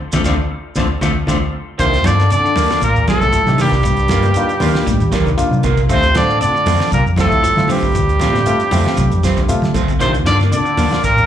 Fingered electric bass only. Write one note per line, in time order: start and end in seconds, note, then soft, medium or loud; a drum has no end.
0.13 0.22 D2 medium
0.25 0.35 D2 medium
0.77 0.87 D2 medium
1.03 1.13 D2 medium
1.28 1.38 D2 medium
1.79 2.05 C2 loud
2.05 2.26 G2 medium
2.56 2.68 D#2 medium
2.82 2.93 A2 loud
2.95 3.17 D#2 medium
3.21 3.31 C2 medium
3.46 3.86 C3 medium
3.84 4.11 C2 loud
4.09 4.31 G2 medium
4.61 4.72 D#2 medium
4.87 4.98 A2 loud
5.00 5.21 D#2 medium
5.27 5.36 C2 medium
5.51 5.91 C3 medium
5.90 6.15 D2 loud
6.15 6.36 A1 medium
6.66 6.77 F2 medium
6.92 7.04 C3 loud
7.06 7.27 F2 medium
7.32 7.42 D2 medium
7.44 muted fingered electric bass stroke soft
7.57 7.97 D3 medium
7.95 8.20 D2 loud
8.20 8.41 A1 medium
8.72 8.83 F2 loud
8.98 9.09 C3 loud
9.11 9.33 F2 medium
9.37 9.47 D2 medium
9.62 10.02 D3 medium
10.00 10.26 C2 loud
10.26 10.47 G2 medium
10.77 10.89 D#2 medium
11.03 11.15 A2 loud
11.17 11.26 D#2 medium